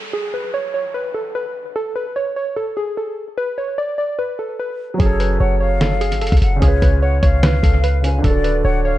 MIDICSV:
0, 0, Header, 1, 7, 480
1, 0, Start_track
1, 0, Key_signature, 3, "minor"
1, 0, Tempo, 405405
1, 157, Time_signature, 4, 2, 24, 8
1, 10636, End_track
2, 0, Start_track
2, 0, Title_t, "Flute"
2, 0, Program_c, 0, 73
2, 5915, Note_on_c, 0, 73, 105
2, 6367, Note_off_c, 0, 73, 0
2, 6396, Note_on_c, 0, 78, 84
2, 6625, Note_off_c, 0, 78, 0
2, 6637, Note_on_c, 0, 77, 94
2, 7550, Note_off_c, 0, 77, 0
2, 7599, Note_on_c, 0, 78, 77
2, 7826, Note_off_c, 0, 78, 0
2, 7837, Note_on_c, 0, 73, 106
2, 8289, Note_off_c, 0, 73, 0
2, 8316, Note_on_c, 0, 78, 92
2, 8545, Note_off_c, 0, 78, 0
2, 8561, Note_on_c, 0, 77, 90
2, 9472, Note_off_c, 0, 77, 0
2, 9517, Note_on_c, 0, 80, 78
2, 9745, Note_off_c, 0, 80, 0
2, 9756, Note_on_c, 0, 74, 102
2, 10208, Note_off_c, 0, 74, 0
2, 10236, Note_on_c, 0, 78, 89
2, 10465, Note_off_c, 0, 78, 0
2, 10475, Note_on_c, 0, 77, 91
2, 10636, Note_off_c, 0, 77, 0
2, 10636, End_track
3, 0, Start_track
3, 0, Title_t, "Synth pluck"
3, 0, Program_c, 1, 84
3, 158, Note_on_c, 1, 68, 99
3, 361, Note_off_c, 1, 68, 0
3, 399, Note_on_c, 1, 71, 69
3, 601, Note_off_c, 1, 71, 0
3, 638, Note_on_c, 1, 73, 82
3, 840, Note_off_c, 1, 73, 0
3, 877, Note_on_c, 1, 73, 84
3, 1080, Note_off_c, 1, 73, 0
3, 1116, Note_on_c, 1, 71, 86
3, 1319, Note_off_c, 1, 71, 0
3, 1354, Note_on_c, 1, 69, 81
3, 1558, Note_off_c, 1, 69, 0
3, 1599, Note_on_c, 1, 71, 86
3, 1801, Note_off_c, 1, 71, 0
3, 2080, Note_on_c, 1, 69, 101
3, 2282, Note_off_c, 1, 69, 0
3, 2316, Note_on_c, 1, 71, 76
3, 2519, Note_off_c, 1, 71, 0
3, 2557, Note_on_c, 1, 73, 84
3, 2760, Note_off_c, 1, 73, 0
3, 2799, Note_on_c, 1, 73, 81
3, 3001, Note_off_c, 1, 73, 0
3, 3036, Note_on_c, 1, 69, 98
3, 3240, Note_off_c, 1, 69, 0
3, 3277, Note_on_c, 1, 68, 82
3, 3480, Note_off_c, 1, 68, 0
3, 3520, Note_on_c, 1, 69, 79
3, 3722, Note_off_c, 1, 69, 0
3, 3996, Note_on_c, 1, 71, 102
3, 4200, Note_off_c, 1, 71, 0
3, 4236, Note_on_c, 1, 73, 73
3, 4439, Note_off_c, 1, 73, 0
3, 4476, Note_on_c, 1, 74, 80
3, 4680, Note_off_c, 1, 74, 0
3, 4714, Note_on_c, 1, 74, 82
3, 4918, Note_off_c, 1, 74, 0
3, 4957, Note_on_c, 1, 71, 96
3, 5160, Note_off_c, 1, 71, 0
3, 5197, Note_on_c, 1, 69, 77
3, 5400, Note_off_c, 1, 69, 0
3, 5440, Note_on_c, 1, 71, 81
3, 5642, Note_off_c, 1, 71, 0
3, 5917, Note_on_c, 1, 68, 101
3, 6120, Note_off_c, 1, 68, 0
3, 6157, Note_on_c, 1, 71, 73
3, 6360, Note_off_c, 1, 71, 0
3, 6397, Note_on_c, 1, 73, 83
3, 6600, Note_off_c, 1, 73, 0
3, 6635, Note_on_c, 1, 73, 80
3, 6839, Note_off_c, 1, 73, 0
3, 6880, Note_on_c, 1, 69, 95
3, 7082, Note_off_c, 1, 69, 0
3, 7115, Note_on_c, 1, 68, 85
3, 7319, Note_off_c, 1, 68, 0
3, 7361, Note_on_c, 1, 69, 92
3, 7562, Note_off_c, 1, 69, 0
3, 7838, Note_on_c, 1, 68, 100
3, 8040, Note_off_c, 1, 68, 0
3, 8079, Note_on_c, 1, 71, 71
3, 8281, Note_off_c, 1, 71, 0
3, 8317, Note_on_c, 1, 73, 80
3, 8520, Note_off_c, 1, 73, 0
3, 8557, Note_on_c, 1, 73, 86
3, 8760, Note_off_c, 1, 73, 0
3, 8796, Note_on_c, 1, 71, 90
3, 8999, Note_off_c, 1, 71, 0
3, 9034, Note_on_c, 1, 69, 80
3, 9238, Note_off_c, 1, 69, 0
3, 9279, Note_on_c, 1, 71, 85
3, 9481, Note_off_c, 1, 71, 0
3, 9760, Note_on_c, 1, 69, 103
3, 9961, Note_off_c, 1, 69, 0
3, 9995, Note_on_c, 1, 71, 74
3, 10199, Note_off_c, 1, 71, 0
3, 10237, Note_on_c, 1, 73, 83
3, 10440, Note_off_c, 1, 73, 0
3, 10479, Note_on_c, 1, 73, 84
3, 10636, Note_off_c, 1, 73, 0
3, 10636, End_track
4, 0, Start_track
4, 0, Title_t, "Grand piano"
4, 0, Program_c, 2, 0
4, 5849, Note_on_c, 2, 54, 75
4, 5895, Note_on_c, 2, 61, 67
4, 5941, Note_on_c, 2, 68, 64
4, 5987, Note_on_c, 2, 69, 81
4, 6164, Control_c, 2, 64, 127
4, 7764, Note_off_c, 2, 54, 0
4, 7767, Note_on_c, 2, 49, 72
4, 7787, Note_off_c, 2, 61, 0
4, 7811, Note_off_c, 2, 68, 0
4, 7813, Note_on_c, 2, 61, 66
4, 7834, Note_off_c, 2, 69, 0
4, 7856, Control_c, 2, 64, 0
4, 7859, Note_on_c, 2, 65, 67
4, 7905, Note_on_c, 2, 71, 76
4, 8064, Control_c, 2, 64, 127
4, 9448, Note_off_c, 2, 49, 0
4, 9471, Note_off_c, 2, 61, 0
4, 9488, Note_on_c, 2, 49, 49
4, 9495, Note_off_c, 2, 65, 0
4, 9510, Note_on_c, 2, 61, 53
4, 9518, Note_off_c, 2, 71, 0
4, 9534, Note_on_c, 2, 65, 51
4, 9557, Note_on_c, 2, 71, 58
4, 9689, Note_on_c, 2, 50, 73
4, 9735, Note_on_c, 2, 62, 67
4, 9743, Note_off_c, 2, 49, 0
4, 9754, Note_off_c, 2, 61, 0
4, 9766, Note_off_c, 2, 65, 0
4, 9775, Control_c, 2, 64, 0
4, 9777, Note_off_c, 2, 71, 0
4, 9781, Note_on_c, 2, 66, 62
4, 9827, Note_on_c, 2, 69, 77
4, 10001, Control_c, 2, 64, 127
4, 10636, Note_off_c, 2, 50, 0
4, 10636, Note_off_c, 2, 62, 0
4, 10636, Note_off_c, 2, 66, 0
4, 10636, Note_off_c, 2, 69, 0
4, 10636, End_track
5, 0, Start_track
5, 0, Title_t, "808-style bass"
5, 0, Program_c, 3, 38
5, 5918, Note_on_c, 3, 30, 111
5, 6378, Note_off_c, 3, 30, 0
5, 6397, Note_on_c, 3, 30, 106
5, 7245, Note_on_c, 3, 32, 100
5, 7262, Note_off_c, 3, 30, 0
5, 7357, Note_on_c, 3, 30, 100
5, 7375, Note_off_c, 3, 32, 0
5, 7478, Note_off_c, 3, 30, 0
5, 7485, Note_on_c, 3, 37, 106
5, 7590, Note_off_c, 3, 37, 0
5, 7597, Note_on_c, 3, 30, 107
5, 7828, Note_off_c, 3, 30, 0
5, 7838, Note_on_c, 3, 37, 110
5, 8068, Note_off_c, 3, 37, 0
5, 8078, Note_on_c, 3, 37, 105
5, 8538, Note_off_c, 3, 37, 0
5, 8558, Note_on_c, 3, 37, 103
5, 9019, Note_off_c, 3, 37, 0
5, 9038, Note_on_c, 3, 37, 106
5, 9729, Note_off_c, 3, 37, 0
5, 9758, Note_on_c, 3, 26, 112
5, 10219, Note_off_c, 3, 26, 0
5, 10237, Note_on_c, 3, 26, 108
5, 10636, Note_off_c, 3, 26, 0
5, 10636, End_track
6, 0, Start_track
6, 0, Title_t, "Downlifter"
6, 0, Program_c, 4, 103
6, 0, Note_on_c, 4, 60, 83
6, 2078, Note_off_c, 4, 60, 0
6, 10636, End_track
7, 0, Start_track
7, 0, Title_t, "Drums"
7, 5918, Note_on_c, 9, 36, 110
7, 5918, Note_on_c, 9, 42, 88
7, 6036, Note_off_c, 9, 36, 0
7, 6036, Note_off_c, 9, 42, 0
7, 6157, Note_on_c, 9, 42, 68
7, 6275, Note_off_c, 9, 42, 0
7, 6878, Note_on_c, 9, 38, 114
7, 6878, Note_on_c, 9, 42, 79
7, 6996, Note_off_c, 9, 38, 0
7, 6996, Note_off_c, 9, 42, 0
7, 7118, Note_on_c, 9, 42, 67
7, 7236, Note_off_c, 9, 42, 0
7, 7245, Note_on_c, 9, 42, 69
7, 7358, Note_off_c, 9, 42, 0
7, 7358, Note_on_c, 9, 42, 69
7, 7421, Note_off_c, 9, 42, 0
7, 7421, Note_on_c, 9, 42, 67
7, 7485, Note_off_c, 9, 42, 0
7, 7485, Note_on_c, 9, 36, 100
7, 7485, Note_on_c, 9, 42, 69
7, 7541, Note_off_c, 9, 42, 0
7, 7541, Note_on_c, 9, 42, 69
7, 7600, Note_off_c, 9, 42, 0
7, 7600, Note_on_c, 9, 42, 83
7, 7603, Note_off_c, 9, 36, 0
7, 7718, Note_off_c, 9, 42, 0
7, 7838, Note_on_c, 9, 36, 107
7, 7838, Note_on_c, 9, 42, 84
7, 7956, Note_off_c, 9, 36, 0
7, 7956, Note_off_c, 9, 42, 0
7, 8077, Note_on_c, 9, 42, 69
7, 8078, Note_on_c, 9, 36, 97
7, 8195, Note_off_c, 9, 42, 0
7, 8196, Note_off_c, 9, 36, 0
7, 8558, Note_on_c, 9, 36, 95
7, 8558, Note_on_c, 9, 42, 76
7, 8676, Note_off_c, 9, 42, 0
7, 8677, Note_off_c, 9, 36, 0
7, 8798, Note_on_c, 9, 38, 116
7, 8798, Note_on_c, 9, 42, 83
7, 8917, Note_off_c, 9, 38, 0
7, 8917, Note_off_c, 9, 42, 0
7, 9037, Note_on_c, 9, 36, 99
7, 9041, Note_on_c, 9, 42, 83
7, 9156, Note_off_c, 9, 36, 0
7, 9160, Note_off_c, 9, 42, 0
7, 9279, Note_on_c, 9, 42, 78
7, 9397, Note_off_c, 9, 42, 0
7, 9520, Note_on_c, 9, 42, 86
7, 9639, Note_off_c, 9, 42, 0
7, 9758, Note_on_c, 9, 36, 109
7, 9758, Note_on_c, 9, 42, 87
7, 9876, Note_off_c, 9, 36, 0
7, 9876, Note_off_c, 9, 42, 0
7, 9997, Note_on_c, 9, 42, 69
7, 10115, Note_off_c, 9, 42, 0
7, 10636, End_track
0, 0, End_of_file